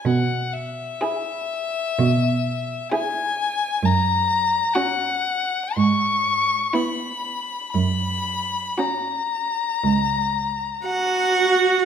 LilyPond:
<<
  \new Staff \with { instrumentName = "Violin" } { \time 4/4 \key fis \mixolydian \tempo 4 = 61 fis''8 e''2~ e''8 gis''4 | ais''4 fis''4 cis'''4 b''4 | b''4 ais''2~ ais''8 r8 | }
  \new Staff \with { instrumentName = "Violin" } { \time 4/4 \key fis \mixolydian r4 gis'4 r4 gis'4 | r4 fis'4 r4 e'4 | r4 fis'4 r4 fis''4 | }
  \new Staff \with { instrumentName = "Viola" } { \time 4/4 \key fis \mixolydian r4 e'4 r4 e'4 | r4 cis'4 r4 b4 | r4 cis'4 r4 fis'4 | }
  \new Staff \with { instrumentName = "Cello" } { \clef bass \time 4/4 \key fis \mixolydian b,4 r4 b,4 r4 | fis,4 r4 gis,4 r4 | fis,4 r4 cis,4 r4 | }
>>